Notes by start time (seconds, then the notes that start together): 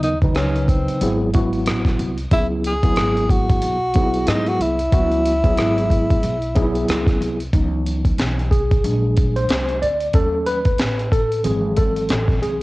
Already playing: D#2 C#3 F#3 B3 D#4
0.03 D#4, closed hi-hat
0.22 C#3 F#3 D#4 B4, kick, closed hi-hat
0.35 C#2 C#4, cross-stick, closed hi-hat
0.56 closed hi-hat
0.68 C4, kick, closed hi-hat
0.88 muted upright bass stroke, closed hi-hat
1.01 G#1 F#3 B3 E4 G#4, closed hi-hat
1.33 F#3 B3 E4 F#4, kick, closed hi-hat
1.53 closed hi-hat
1.66 A1, cross-stick, closed hi-hat
1.85 kick, cross-stick, closed hi-hat
1.99 C2, closed hi-hat
2.18 closed hi-hat
2.31 C#2 F#3 B3 E4 G#4, kick, closed hi-hat
2.64 G#4, closed hi-hat
2.83 F#3 B3 E4 G#4, kick, closed hi-hat
2.96 G#1, cross-stick, closed hi-hat
3.17 closed hi-hat
3.29 F#4, kick, closed hi-hat
3.50 kick, closed hi-hat
3.62 B1, closed hi-hat
3.94 F#3 B3 D#4 G#4, kick, closed hi-hat
4.02 E4
4.14 closed hi-hat
4.27 G#2 D#4, cross-stick, closed hi-hat
4.46 F#4, closed hi-hat
4.60 C2 E4, closed hi-hat
4.79 closed hi-hat
4.92 C#2 F#3 B3 E4 F#4, kick, closed hi-hat
5.12 closed hi-hat
5.26 closed hi-hat
5.44 F#3 B3 E4 G#4, kick, closed hi-hat
5.58 G#1, cross-stick, closed hi-hat
5.78 closed hi-hat
5.90 kick, closed hi-hat
6.11 kick, closed hi-hat
6.23 B1, closed hi-hat
6.42 closed hi-hat
6.55 F#3 B3 D#4 G#4, kick, closed hi-hat
6.63 E4
6.75 closed hi-hat
6.89 C#2, cross-stick, closed hi-hat
7.07 kick, cross-stick, closed hi-hat
7.21 C2, closed hi-hat
7.40 closed hi-hat
7.53 C#2 E3 F#3 B3 D#4, kick, closed hi-hat
7.86 closed hi-hat
8.05 kick, closed hi-hat
8.18 B1, snare, closed hi-hat
8.39 closed hi-hat
8.51 G#4, kick, closed hi-hat
8.71 kick, closed hi-hat
8.84 A#1 F#3 G#3 D4, closed hi-hat
9.16 kick, closed hi-hat
9.36 C5, closed hi-hat
9.48 C2, snare, closed hi-hat
9.68 closed hi-hat
9.82 D2 D5, closed hi-hat
10.00 closed hi-hat
10.13 D#2 F#3 A3 C#4 A4, kick, closed hi-hat
10.46 B4, closed hi-hat
10.65 kick, closed hi-hat
10.78 A1, snare, closed hi-hat
10.99 closed hi-hat
11.12 A4, kick, closed hi-hat
11.32 closed hi-hat
11.44 G#1 E3 F#3 C4 G#4, closed hi-hat
11.77 A4, kick, closed hi-hat
11.97 closed hi-hat
12.09 A1, snare, closed hi-hat
12.28 kick, snare, closed hi-hat
12.42 C2 G#4, closed hi-hat